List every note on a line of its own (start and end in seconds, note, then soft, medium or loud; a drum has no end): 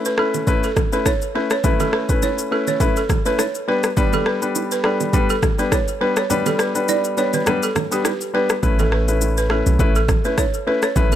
0.00 0.15 A3 medium
0.00 0.15 C#4 medium
0.00 0.15 E4 medium
0.00 0.15 B4 medium
0.05 0.13 B4 medium
0.05 shaker medium
0.18 0.45 A3 medium
0.18 0.45 C#4 medium
0.18 0.45 E4 medium
0.18 0.28 A4 medium
0.18 0.46 B4 medium
0.18 cross-stick medium
0.34 low bongo medium
0.34 shaker soft
0.47 0.66 A3 medium
0.47 0.66 C#4 medium
0.47 0.66 E4 medium
0.47 0.66 B4 loud
0.47 kick medium
0.47 low conga medium
0.47 shaker medium
0.63 0.71 A4 medium
0.63 shaker medium
0.76 kick medium
0.76 cross-stick medium
0.76 low bongo medium
0.76 low conga medium
0.76 shaker soft
0.92 1.08 A3 medium
0.92 1.08 C#4 medium
0.92 1.08 E4 medium
0.92 1.09 B4 medium
0.92 1.01 B4 medium
0.92 shaker medium
1.05 1.15 C#5 medium
1.05 kick medium
1.05 cross-stick medium
1.05 high bongo medium
1.05 shaker medium
1.22 shaker soft
1.35 1.53 A3 medium
1.35 1.53 C#4 medium
1.35 1.53 E4 medium
1.35 1.53 B4 medium
1.35 1.44 B4 medium
1.50 1.59 C#5 medium
1.50 cross-stick medium
1.50 shaker medium
1.64 2.05 A3 medium
1.64 2.05 C#4 medium
1.64 2.05 E4 medium
1.64 2.06 B4 loud
1.64 kick loud
1.64 low conga medium
1.64 shaker medium
1.80 1.88 A4 medium
1.80 low bongo medium
1.80 shaker medium
1.93 2.03 B4 medium
1.93 cross-stick medium
2.09 2.48 A3 medium
2.09 2.48 C#4 medium
2.09 2.48 E4 medium
2.09 2.48 B4 medium
2.09 kick medium
2.09 shaker medium
2.22 2.32 C#5 medium
2.22 high bongo medium
2.22 shaker medium
2.38 shaker medium
2.51 2.78 A3 medium
2.51 2.78 C#4 medium
2.51 2.78 E4 medium
2.51 2.61 A4 medium
2.51 2.79 B4 medium
2.67 2.75 C#5 medium
2.67 low bongo medium
2.67 shaker medium
2.80 2.98 A3 medium
2.80 2.99 C#4 medium
2.80 2.99 E4 medium
2.80 2.99 B4 loud
2.80 kick medium
2.80 low conga medium
2.80 shaker medium
2.96 3.04 A4 medium
2.96 shaker medium
3.09 kick medium
3.09 cross-stick medium
3.09 low bongo medium
3.09 low conga medium
3.09 shaker soft
3.25 3.41 A3 medium
3.25 3.41 C#4 medium
3.25 3.41 E4 medium
3.25 3.42 B4 medium
3.25 3.34 B4 medium
3.25 shaker medium
3.38 3.48 C#5 medium
3.38 cross-stick medium
3.38 high bongo medium
3.38 shaker medium
3.55 shaker medium
3.68 3.86 G3 medium
3.68 3.86 B3 medium
3.68 3.86 D4 medium
3.68 3.86 B4 medium
3.68 3.77 B4 medium
3.83 cross-stick medium
3.83 shaker medium
3.97 4.38 G3 medium
3.97 4.38 B3 medium
3.97 4.38 D4 medium
3.97 4.38 B4 loud
3.97 kick loud
3.97 low conga medium
3.97 shaker medium
4.13 4.21 A4 medium
4.13 low bongo medium
4.13 shaker medium
4.26 4.36 B4 medium
4.26 cross-stick medium
4.42 4.81 G3 medium
4.42 4.81 B3 medium
4.42 4.81 D4 medium
4.42 4.81 B4 medium
4.42 shaker medium
4.55 high bongo medium
4.55 shaker medium
4.71 4.79 B4 medium
4.71 shaker medium
4.84 5.11 G3 medium
4.84 5.11 B3 medium
4.84 5.12 D4 medium
4.84 4.94 A4 medium
4.84 5.12 B4 medium
4.84 cross-stick medium
5.00 low bongo medium
5.00 shaker soft
5.13 5.32 G3 medium
5.13 5.32 B3 medium
5.13 5.32 D4 medium
5.13 5.32 B4 loud
5.13 kick medium
5.13 low conga medium
5.13 shaker medium
5.30 5.37 A4 medium
5.30 shaker medium
5.43 kick medium
5.43 cross-stick medium
5.43 low bongo medium
5.43 low conga medium
5.43 shaker soft
5.58 5.74 G3 medium
5.58 5.74 B3 medium
5.58 5.74 D4 medium
5.58 5.75 B4 medium
5.58 5.66 B4 medium
5.58 shaker medium
5.72 5.81 C#5 medium
5.72 kick medium
5.72 cross-stick medium
5.72 high bongo medium
5.72 shaker medium
5.88 shaker soft
6.01 6.19 G3 medium
6.01 6.19 B3 medium
6.01 6.19 D4 medium
6.01 6.10 B4 medium
6.01 6.19 B4 medium
6.16 6.25 C#5 medium
6.16 cross-stick medium
6.16 shaker medium
6.30 6.71 G3 medium
6.30 6.71 B3 medium
6.30 6.71 D4 medium
6.30 6.72 B4 loud
6.30 low conga medium
6.30 shaker medium
6.46 6.54 A4 medium
6.46 low bongo medium
6.46 shaker medium
6.59 6.69 B4 medium
6.59 cross-stick medium
6.59 shaker soft
6.75 7.14 G3 medium
6.75 7.14 B3 medium
6.75 7.14 D4 medium
6.75 7.14 B4 medium
6.75 shaker medium
6.88 6.98 D5 medium
6.88 high bongo medium
6.88 shaker medium
7.04 shaker medium
7.17 7.44 G3 medium
7.17 7.44 B3 medium
7.17 7.44 D4 medium
7.17 7.45 B4 medium
7.17 7.34 C#5 medium
7.17 shaker soft
7.33 7.41 B4 medium
7.33 low bongo medium
7.33 shaker soft
7.46 7.64 G3 medium
7.46 7.65 B3 medium
7.46 7.65 D4 medium
7.46 7.65 B4 loud
7.46 cross-stick loud
7.46 low conga medium
7.46 shaker medium
7.63 7.71 A4 medium
7.63 shaker medium
7.76 cross-stick medium
7.76 low bongo medium
7.76 low conga medium
7.76 shaker soft
7.91 8.07 G3 medium
7.91 8.07 B3 medium
7.91 8.07 D4 medium
7.91 8.00 G4 medium
7.91 8.08 B4 medium
7.91 shaker medium
8.04 8.14 B4 medium
8.04 cross-stick medium
8.04 high bongo medium
8.04 shaker medium
8.21 shaker soft
8.34 8.52 G3 medium
8.34 8.52 B3 medium
8.34 8.52 D4 medium
8.34 8.52 B4 medium
8.34 8.43 B4 medium
8.49 cross-stick medium
8.49 shaker medium
8.63 9.62 A1 loud
8.63 9.04 A3 medium
8.63 9.04 C#4 medium
8.63 9.04 E4 medium
8.63 9.04 B4 medium
8.63 kick loud
8.63 low conga medium
8.63 shaker medium
8.79 8.87 A4 medium
8.79 low bongo medium
8.79 shaker medium
8.92 9.02 B4 medium
8.92 cross-stick medium
9.08 9.47 A3 medium
9.08 9.47 C#4 medium
9.08 9.47 E4 medium
9.08 9.47 B4 medium
9.08 shaker medium
9.21 high bongo medium
9.21 shaker medium
9.37 9.45 B4 medium
9.37 shaker medium
9.50 9.77 A3 medium
9.50 9.77 C#4 medium
9.50 9.78 E4 medium
9.50 9.60 A4 medium
9.50 9.78 B4 medium
9.50 cross-stick medium
9.66 9.77 B1 medium
9.66 low bongo medium
9.66 shaker medium
9.79 10.17 A1 loud
9.79 9.98 A3 medium
9.79 9.98 C#4 medium
9.79 9.98 E4 medium
9.79 9.98 B4 loud
9.79 kick medium
9.79 low conga medium
9.79 shaker medium
9.95 10.03 A4 medium
9.95 shaker medium
10.08 kick loud
10.08 cross-stick medium
10.08 low bongo medium
10.08 low conga medium
10.08 shaker soft
10.25 10.40 A3 medium
10.25 10.40 C#4 medium
10.25 10.41 E4 medium
10.25 10.41 B4 medium
10.25 10.38 B4 medium
10.25 shaker medium
10.38 10.47 C#5 medium
10.38 kick medium
10.38 cross-stick medium
10.38 high bongo medium
10.38 shaker medium
10.54 shaker soft
10.67 10.85 A3 medium
10.67 10.85 C#4 medium
10.67 10.85 E4 medium
10.67 10.85 B4 medium
10.67 10.83 B4 medium
10.82 10.91 C#5 medium
10.82 cross-stick medium
10.82 shaker medium
10.96 11.15 A1 loud
10.96 11.15 A3 medium
10.96 11.15 C#4 medium
10.96 11.15 E4 medium
10.96 11.15 B4 loud
10.96 kick loud
10.96 low conga medium
10.96 shaker medium
11.12 low bongo medium
11.12 shaker medium